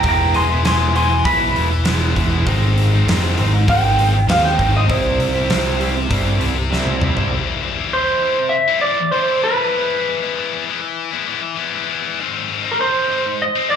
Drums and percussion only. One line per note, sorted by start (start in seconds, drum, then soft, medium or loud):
0.03 kick loud
0.03 open hi-hat medium
0.34 open hi-hat medium
0.65 snare loud
0.65 open hi-hat medium
0.96 open hi-hat medium
1.25 kick loud
1.25 open hi-hat medium
1.56 open hi-hat medium
1.85 snare loud
1.85 open hi-hat medium
2.16 kick medium
2.16 open hi-hat medium
2.47 kick loud
2.47 open hi-hat medium
2.78 open hi-hat medium
3.08 snare loud
3.08 open hi-hat medium
3.38 open hi-hat medium
3.68 kick loud
3.68 open hi-hat medium
3.99 open hi-hat medium
4.29 snare loud
4.29 open hi-hat medium
4.46 snare soft
4.59 kick medium
4.59 open hi-hat medium
4.90 kick loud
4.90 open hi-hat medium
5.20 open hi-hat medium
5.50 snare loud
5.50 open hi-hat medium
5.81 open hi-hat medium
6.11 kick loud
6.11 open hi-hat medium
6.41 open hi-hat medium
6.73 snare medium
6.87 high tom medium
7.01 mid tom medium
7.17 floor tom medium